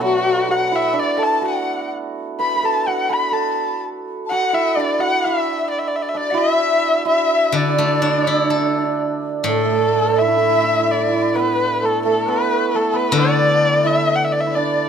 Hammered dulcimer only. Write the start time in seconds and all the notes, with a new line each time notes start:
Already playing: A3 B3 D4 E4
0.01 F#3
0.49 F#4
0.72 E4
0.93 D4
1.17 A4
1.41 F#4
2.39 B4
2.56 B4
2.63 A4
2.87 F#4
3.10 B4
3.32 A4
4.31 F#4
4.53 E4
4.77 D4
4.99 F#4
5.26 E4
6.14 D4
6.32 E4 F#4
7.05 E4
7.54 D4
7.62 D4
7.69 D4
7.76 D4
7.84 D4
7.94 D4
8.00 D4
8.10 D4
8.18 D4
8.24 D4
8.34 D4
8.39 D4
8.45 D4
8.55 D4
8.61 D4
8.67 D4
8.78 D4
8.85 D4
9.49 A3
9.55 A3
9.65 A3
9.72 A3
9.78 A3
9.86 A3
9.95 A3
10.00 A3
10.09 A3
10.21 E4
10.28 E4
10.37 E4
10.43 E4
10.50 E4
10.56 E4
10.64 E4
10.73 E4
10.79 E4
10.86 E4
10.94 E4
11.00 E4
11.09 E4
11.13 E4
11.21 E4
11.36 B3
11.83 A3
12.05 A3
12.28 B3
12.74 A3
12.93 B3
13.17 D4
13.85 E4
14.46 E4
14.56 D4